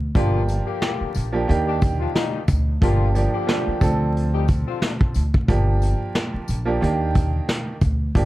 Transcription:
0.15 0.59 G1 loud
0.15 0.42 D3 loud
0.15 1.23 F3 loud
0.15 1.23 A#3 medium
0.15 0.42 A#3 loud
0.15 1.23 D4 medium
0.15 0.42 F4 loud
0.15 1.24 G4 loud
0.15 kick loud
0.15 closed hi-hat loud
0.49 closed hi-hat medium
0.49 tambourine soft
0.66 1.12 D3 medium
0.66 1.12 A#3 medium
0.66 1.12 G4 medium
0.82 snare loud
0.82 closed hi-hat medium
1.00 muted upright bass stroke soft
1.15 1.43 A#1 medium
1.15 closed hi-hat medium
1.15 tambourine medium
1.32 1.48 F3 loud
1.32 1.47 A#3 medium
1.32 1.47 D4 medium
1.32 1.48 G4 loud
1.48 2.05 D#2 loud
1.48 2.41 D#3 loud
1.48 2.41 A#3 medium
1.48 2.41 D4 medium
1.48 2.42 G4 loud
1.48 closed hi-hat medium
1.67 1.79 D#3 medium
1.67 1.79 D4 medium
1.67 1.79 G4 medium
1.82 kick medium
1.82 closed hi-hat medium
1.82 tambourine soft
1.99 2.12 F3 medium
1.99 2.12 D4 medium
1.99 2.12 F4 loud
2.15 2.41 A#2 loud
2.15 2.42 G3 loud
2.15 2.42 D#4 loud
2.15 snare loud
2.15 closed hi-hat loud
2.48 2.77 D2 medium
2.48 kick medium
2.48 closed hi-hat medium
2.48 tambourine medium
2.81 3.25 G1 loud
2.81 3.09 D3 loud
2.81 3.13 F3 medium
2.81 3.13 A#3 medium
2.81 3.09 A#3 loud
2.81 3.13 D4 medium
2.81 3.09 F4 loud
2.81 3.13 G4 loud
2.81 kick loud
2.81 closed hi-hat loud
3.15 3.45 F3 medium
3.15 3.46 A#3 medium
3.15 3.46 D4 medium
3.15 3.47 G4 loud
3.15 closed hi-hat medium
3.15 tambourine soft
3.33 3.79 D3 loud
3.33 3.79 A#3 medium
3.33 3.79 G4 loud
3.47 3.80 F3 loud
3.47 3.81 A#3 medium
3.47 3.81 D4 medium
3.47 3.82 G4 loud
3.47 snare loud
3.47 closed hi-hat medium
3.67 muted upright bass stroke soft
3.81 4.63 D2 loud
3.81 5.20 F3 loud
3.81 5.20 C4 medium
3.81 5.21 D4 medium
3.81 5.21 A4 loud
3.81 kick medium
3.81 closed hi-hat medium
3.81 tambourine medium
4.17 closed hi-hat medium
4.34 4.46 G3 medium
4.34 4.46 D#4 medium
4.34 4.46 G4 medium
4.48 kick medium
4.48 closed hi-hat medium
4.48 tambourine soft
4.67 4.94 D3 medium
4.67 4.94 C4 medium
4.67 4.94 F4 medium
4.82 snare loud
4.82 closed hi-hat loud
5.01 kick loud
5.14 5.43 D2 medium
5.14 closed hi-hat medium
5.14 tambourine medium
5.34 kick loud
5.48 5.92 G1 loud
5.48 6.56 F3 loud
5.48 6.57 A#3 medium
5.48 6.57 D4 medium
5.48 6.57 G4 loud
5.48 kick loud
5.48 closed hi-hat loud
5.82 closed hi-hat medium
5.82 tambourine soft
6.15 snare loud
6.15 closed hi-hat medium
6.34 muted upright bass stroke soft
6.48 6.77 A#1 medium
6.48 closed hi-hat medium
6.48 tambourine medium
6.66 6.81 F3 loud
6.66 6.80 A#3 medium
6.66 6.80 D4 medium
6.66 6.81 G4 loud
6.81 7.38 D#2 loud
6.81 7.74 D#3 loud
6.81 7.74 A#3 medium
6.81 7.75 D4 medium
6.81 7.75 G4 loud
6.81 closed hi-hat medium
7.15 kick medium
7.15 closed hi-hat medium
7.15 tambourine soft
7.49 snare loud
7.49 closed hi-hat loud
7.81 8.10 D2 medium
7.81 kick medium
7.81 closed hi-hat medium
7.81 tambourine medium
8.15 8.25 G1 loud
8.15 8.25 F3 medium
8.15 8.25 A#3 medium
8.15 8.25 D4 medium
8.15 8.25 G4 loud
8.15 kick loud
8.15 closed hi-hat loud

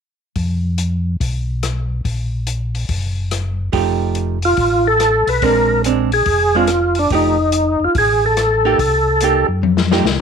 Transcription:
0.36 1.17 F2 medium
0.36 kick soft
0.36 open hi-hat soft
0.78 closed hi-hat soft
1.20 2.01 B1 medium
1.20 kick soft
1.20 open hi-hat soft
1.63 cross-stick soft
1.63 closed hi-hat soft
2.05 2.85 A#1 medium
2.05 kick soft
2.05 open hi-hat soft
2.47 closed hi-hat soft
2.75 open hi-hat soft
2.89 3.70 F#1 medium
2.89 kick soft
2.89 open hi-hat soft
3.31 cross-stick soft
3.31 closed hi-hat soft
3.72 4.54 F1 medium
3.72 4.37 F3 soft
3.72 4.37 A3 soft
3.72 4.38 D#4 soft
3.72 4.38 G4 medium
3.72 kick soft
3.72 open hi-hat soft
4.15 closed hi-hat soft
4.42 4.88 F4 medium
4.42 open hi-hat soft
4.57 5.23 A1 medium
4.57 kick soft
4.57 open hi-hat soft
4.87 5.30 A4 loud
5.00 cross-stick soft
5.00 closed hi-hat soft
5.27 5.41 B1 medium
5.27 5.43 B4 medium
5.27 open hi-hat soft
5.42 6.23 A#1 medium
5.42 5.83 G#3 soft
5.42 5.83 C4 soft
5.42 5.84 D4 soft
5.42 5.82 A#4 medium
5.42 kick soft
5.42 open hi-hat soft
5.84 6.10 G#3 soft
5.84 6.10 C4 medium
5.84 6.10 D4 medium
5.84 closed hi-hat soft
6.12 6.56 G#4 medium
6.12 open hi-hat soft
6.26 7.07 F1 medium
6.26 kick soft
6.26 open hi-hat soft
6.55 6.68 G#3 medium
6.55 6.68 C4 medium
6.55 6.69 D4 medium
6.55 6.99 F4 medium
6.67 cross-stick soft
6.67 closed hi-hat soft
6.95 7.11 D4 medium
6.95 open hi-hat soft
7.10 7.76 F1 medium
7.10 7.36 F3 soft
7.10 7.36 A3 soft
7.10 7.36 D#4 soft
7.10 7.36 G4 soft
7.10 kick soft
7.10 open hi-hat soft
7.15 7.84 D#4 medium
7.52 closed hi-hat soft
7.80 7.87 F1 soft
7.84 7.96 F4 medium
7.95 8.75 A1 medium
7.95 8.25 G#4 medium
7.95 kick soft
7.95 open hi-hat soft
8.26 9.47 A4 medium
8.37 cross-stick medium
8.37 closed hi-hat soft
8.65 8.78 A#3 medium
8.65 8.78 D#4 medium
8.65 8.79 G4 medium
8.78 9.44 C2 medium
8.78 kick soft
8.78 open hi-hat soft
9.21 9.47 A#3 soft
9.21 9.47 D#4 soft
9.21 9.47 G4 medium
9.21 closed hi-hat soft
9.48 9.62 F#2 medium
9.62 10.02 F2 medium
9.62 high tom soft
9.77 snare soft
9.92 10.05 F3 medium
9.92 10.05 A3 soft
9.92 10.05 D#4 medium
9.92 10.05 G4 medium
9.92 snare soft
10.04 10.21 C2 medium
10.04 snare soft

